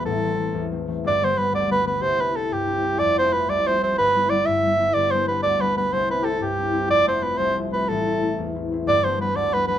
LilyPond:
<<
  \new Staff \with { instrumentName = "Soprano saxophone" } { \time 6/8 \key g \mixolydian \tempo 4. = 123 a'2 r4 | d''8 c''8 b'8 d''8 b'8 b'8 | c''8 b'8 a'8 g'4. | d''8 c''8 b'8 d''8 c''8 c''8 |
b'4 d''8 e''4. | d''8 c''8 b'8 d''8 b'8 b'8 | c''8 b'16. g'32 a'8 g'4. | d''8 c''8 b'8 c''8 r8 b'8 |
a'2 r4 | d''8 c''8 b'8 d''8 b'8 b'8 | }
  \new Staff \with { instrumentName = "Harp" } { \time 6/8 \key g \mixolydian <a,, a,>8 <e a c'>8 <e a c'>8 e,8 <e a c'>8 <e a c'>8 | <g,, g,>8 <d g b>8 <d g b>8 d,8 <d g b>8 <d g b>8 | <c, c>8 <c' d' e'>8 <c' d' e'>8 g,8 <c' d' e'>8 <c' d' e'>8 | <f,, f,>8 <a c' f'>8 <a c' f'>8 c,8 <a c' f'>8 <a c' f'>8 |
<g,, g,>8 <g b e'>8 <g b e'>8 g,8 <g b e'>8 <g b e'>8 | <g,, g,>8 <g b d'>8 <g b d'>8 d,8 <g b d'>8 <g b d'>8 | <c, c>8 <c' d' e'>8 <c' d' e'>8 g,8 <c' d' e'>8 <c' d' e'>8 | <f,, f,>8 <a c' f'>8 <a c' f'>8 c,8 <a c' f'>8 <a c' f'>8 |
<a,, a,>8 <a c' e'>8 <a c' e'>8 e,8 <a c' e'>8 <a c' e'>8 | <g,, g,>8 <g b d'>8 <g b d'>8 d,8 <g b d'>8 <g b d'>8 | }
>>